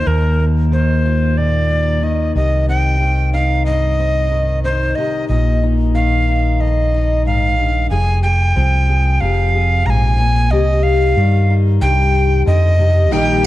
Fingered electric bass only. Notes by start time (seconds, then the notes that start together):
0.07 D#2
2.35 C2
5.29 A#1
7.91 F1
8.57 C2
9.21 F1
9.86 A#1
10.52 C2
11.17 G2
11.81 C2
12.47 F2
13.11 A#1